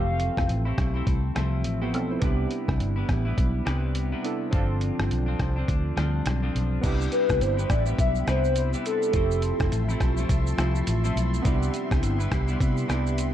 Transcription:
Already playing: F1 E3 F3 A3 C4 G4 F5
0.20 closed hi-hat
0.37 F1, kick, cross-stick
0.49 A1, closed hi-hat
0.65 A3 C4 E4
0.78 B1, kick, cross-stick, closed hi-hat
0.94 A3 C4 E4
1.07 C2, kick, closed hi-hat
1.35 C2 F3 A3 C4 E4, cross-stick, closed hi-hat
1.64 A1, closed hi-hat
1.81 F3 A3 B3 C4 E4 G4
1.94 B1 C4 A4, closed hi-hat
2.11 E4 C5
2.19 C2 C3 G3 B3 D4 E4, kick, closed hi-hat
2.24 E4 G4
2.51 closed hi-hat
2.68 C2, kick, cross-stick
2.80 G1, closed hi-hat
2.96 G3 B3 E4
3.09 A1, kick, cross-stick, closed hi-hat
3.25 G3 B3 E4
3.38 B1, kick, closed hi-hat
3.65 C2 C3 G3 B3 E4, cross-stick, closed hi-hat
3.95 closed hi-hat
4.12 C3 G3 B3 E4
4.23 B3 D4 E4 A4, closed hi-hat
4.51 G1 D3 F3 C4 D4 F4, kick, closed hi-hat
4.56 A4
4.81 closed hi-hat
4.99 G1, cross-stick
5.11 B1, closed hi-hat
5.26 F3 C4 D4
5.39 C2, kick, cross-stick, closed hi-hat
5.56 F3 C4 D4
5.68 D2, kick, closed hi-hat
5.96 D2 G2 D3 F3 C4 D4, cross-stick, closed hi-hat
6.26 B1, cross-stick, closed hi-hat
6.42 G2 D3 F3 C4 D4
6.55 B1, closed hi-hat
6.81 C2 C3 G3 B3 D4 E4 G4 E5 B5 C6, kick, closed hi-hat, crash, shaker
6.85 E4 G4
7.01 shaker
7.12 B4, closed hi-hat, shaker
7.29 C2, kick, cross-stick, shaker
7.41 G1 C5, closed hi-hat, shaker
7.57 G3 B3 E4, shaker
7.70 A1 D5, kick, cross-stick, closed hi-hat, shaker
7.86 B3 E4, shaker
7.90 G3
7.99 B1 E5, kick, closed hi-hat, shaker
8.15 shaker
8.27 C2 C3 G3 B3 E4 C5, cross-stick, closed hi-hat, shaker
8.44 shaker
8.56 C5, closed hi-hat, shaker
8.73 C3 G3 B3 E4, shaker
8.86 A4, closed hi-hat, shaker
9.02 shaker
9.11 F1 F3 A3 C4 E4 A5, kick, closed hi-hat, shaker
9.15 C4 E4 G4
9.31 shaker
9.42 closed hi-hat, shaker
9.60 F1, kick, cross-stick, shaker
9.71 A1, closed hi-hat, shaker
9.89 A3 C4 E4, shaker
10.00 B1, kick, cross-stick, closed hi-hat, shaker
10.17 A3 C4 E4, shaker
10.29 C2, kick, closed hi-hat, shaker
10.47 shaker
10.58 C2 F3 A3 C4 E4, cross-stick, closed hi-hat, shaker
10.75 shaker
10.87 A1, closed hi-hat, shaker
11.04 F3 A3 C4 E4, shaker
11.16 B1, closed hi-hat, shaker
11.34 shaker
11.42 C2 C3 G3 B3 D4 E4 G4 B5, kick, closed hi-hat, shaker
11.47 B3 E4 G4
11.62 shaker
11.74 closed hi-hat, shaker
11.91 C2, kick, cross-stick, shaker
12.03 G1, closed hi-hat, shaker
12.19 G3 B3 E4, shaker
12.32 C2, kick, cross-stick, closed hi-hat, shaker
12.48 G3 B3 E4, shaker
12.60 C3, kick, closed hi-hat, shaker
12.77 shaker
12.88 C2 C3 G3 B3 D4 E4 G4, cross-stick, closed hi-hat, shaker
13.07 shaker
13.18 closed hi-hat, shaker

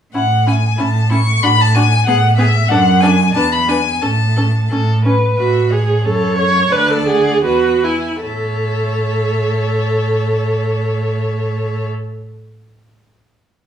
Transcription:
0.14 A2 C#4 E4 F#5
0.46 C#4 E4 G#5
0.78 A2 C#4 E4 A5
1.10 C#4 E4 C#6
1.42 A2 D4 F#4 B5
1.61 A5
1.75 D4 F#4 G#5
2.06 A2 B3 G#4 F#5
2.37 B3 G#4 E5
2.68 F#2 D4 A4 F#5
3.00 D4 A4 G#5
3.34 E2 D4 B4 A5
3.52 B5
3.68 D4 B4 G#5
4.02 A2 C#4 A4 A5
4.36 C#4 A4
4.70 A2 C#4 A4
5.05 C#4 B4
5.38 A2 F#4 E5
5.71 G#4 C#5
6.04 F#2 A4 C#5
6.39 C#5
6.72 D2 B4 D5 A5
6.91 A4
7.08 G#4 F#5
7.45 E2 F#4 B4 B5
7.84 E4 G#5
8.22 A2 A4 C#5 E5

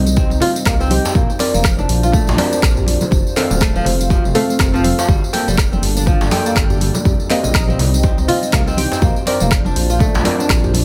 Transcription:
Already playing: C2 G3 C4 D#4 G4 C5 D#5
0.06 tambourine, muted conga
0.16 C4, kick, tambourine, djembe tone
0.30 C2, tambourine, muted conga
0.40 F4, open hi-hat, low conga
0.55 tambourine, muted conga
0.66 C2 A#3, kick, cross-stick, clap, tambourine, djembe tone
0.80 C4, tambourine
0.90 C4 G4 G5, open hi-hat, muted conga, high conga
1.04 C4, tambourine, djembe slap, djembe tone
1.15 A#1 A#3 D4 F4 C5 D5, kick, muted conga, djembe bass
1.30 tambourine
1.39 C4 A#4 D5, open hi-hat, djembe slap, muted conga
1.54 F1 A#3, tambourine, high conga
1.64 kick, cross-stick, clap, tambourine
1.78 D4, tambourine, muted conga, high conga
1.89 A#1, open hi-hat, djembe tone
2.03 F4, tambourine, muted conga
2.12 A3, kick, tambourine, low conga
2.27 A#1, tambourine, muted conga, djembe slap
2.37 C4 A#4 D5, open hi-hat, djembe slap, high conga, djembe tone
2.51 D4, tambourine, muted conga
2.63 A#1, kick, cross-stick, clap, tambourine, djembe tone
2.77 tambourine, djembe bass
2.87 open hi-hat, muted conga, djembe tone
3.01 tambourine, high conga, low conga
3.11 F1 A3 C4 F4 F5, kick, tambourine, muted conga, djembe bass
3.27 tambourine
3.36 D#3 C4 A4 F5, clap, open hi-hat, djembe slap, muted conga
3.50 D#1, tambourine, high conga, low conga
3.61 A3, kick, cross-stick, clap, tambourine
3.75 F3, tambourine, muted conga, high conga
3.85 F1, open hi-hat, djembe tone, low conga
4.00 tambourine, muted conga
4.10 F3, kick, tambourine, djembe tone
4.24 F1, tambourine, muted conga, djembe tone
4.35 A3 C4 A4 F5, open hi-hat, low conga
4.49 tambourine, muted conga
4.59 F1 D#3, kick, cross-stick, clap, tambourine, djembe tone
4.74 F3 C4 A4 F5, tambourine
4.84 C4 A4 F5, open hi-hat, muted conga, high conga
4.98 F3, tambourine, djembe slap, djembe tone
5.08 G1 G3 A#3 D4 A4 D5, kick, tambourine, muted conga, djembe bass
5.24 tambourine
5.33 A#3 A4 G5, open hi-hat, djembe slap, muted conga
5.47 F1 G3, tambourine, high conga
5.58 kick, cross-stick, clap, tambourine
5.72 C4, tambourine, muted conga, high conga
5.82 G1, open hi-hat, djembe tone
5.97 D4, tambourine, muted conga
6.06 F3, kick, tambourine, low conga
6.21 G1, tambourine, djembe slap, muted conga
6.31 A#3 A4 G5, open hi-hat, djembe slap, high conga, djembe tone
6.45 A#3, tambourine, muted conga
6.55 G1, kick, cross-stick, clap, tambourine, djembe tone
6.70 tambourine, djembe bass
6.80 open hi-hat, muted conga, djembe tone
6.94 tambourine, high conga, low conga
7.05 C2 C4 D#4 C5 D#5, kick, tambourine, muted conga, djembe bass
7.20 tambourine
7.30 A#3 C4 G4 D#5, clap, open hi-hat, muted conga, djembe slap
7.43 A#1, tambourine, high conga, low conga
7.54 D#4, kick, cross-stick, clap, tambourine
7.68 C4, tambourine, muted conga, high conga
7.79 C2, open hi-hat, djembe tone, low conga
7.94 tambourine, muted conga
8.03 C4, kick, tambourine, djembe tone
8.18 C2, tambourine, muted conga
8.28 F4, open hi-hat, low conga
8.42 tambourine, muted conga
8.53 C2 A#3, kick, cross-stick, clap, tambourine, djembe tone
8.67 C4, tambourine
8.76 C4 G4 G5, open hi-hat, muted conga, high conga
8.92 C4, tambourine, djembe slap, djembe tone
9.02 A#1 A#3 D4 F4 D5, kick, tambourine, muted conga, djembe bass
9.16 tambourine
9.26 C4 A#4 D5, open hi-hat, muted conga, djembe slap
9.40 F1 A#3, tambourine, high conga
9.51 kick, cross-stick, clap, tambourine
9.64 D4, tambourine, muted conga, high conga
9.76 A#1, open hi-hat, djembe tone
9.90 F4, tambourine, muted conga
9.99 A3, kick, tambourine, low conga
10.14 A#1, tambourine, muted conga, djembe slap
10.24 C4 A#4 D5, open hi-hat, djembe slap, high conga, djembe tone
10.39 D4, tambourine, muted conga
10.49 A#1, kick, cross-stick, clap, tambourine, djembe tone
10.64 tambourine, djembe bass
10.74 open hi-hat, muted conga, djembe tone

